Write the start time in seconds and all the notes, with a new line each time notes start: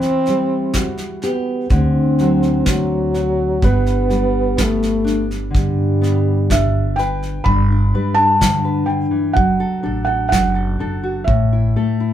Already playing: E2 E3 C4
0.02 snare
0.26 G3, snare
0.74 F#4, kick, snare
0.97 snare
1.22 B3 G4, snare
1.70 D2 D3 C4, kick, snare
2.19 F#3, snare
2.43 snare
2.66 D2 F#3 C4, kick, snare
3.14 F#4, snare
3.62 G1 G3 B3 D4 B4, kick, snare
3.86 snare
4.09 G3, snare
4.57 B3, kick, snare
4.62 A3
4.83 snare
5.04 D4, snare
5.31 snare
5.51 G2 D3
5.55 G3, kick, snare
6.02 B3, snare
6.50 G1 D4 E5, kick, snare
6.96 B4 G5, snare
7.23 snare
7.44 G1 G2 B5, kick
7.72 D4
7.94 G3 B4
8.14 D4 A5
8.41 D3, kick, snare
8.65 B4
8.86 D3 G5
9.11 E3
9.33 F#1 F#3 F#5, kick
9.60 A4
9.83 A1 D4 A4
10.05 A4 F#5
10.29 F#1 F#3 F#5, kick, snare
10.55 A4
10.79 F#1 D4 A4
11.03 F#4
11.24 A1 A2 E5, kick
11.53 E4
11.76 A3 A4
12.00 E4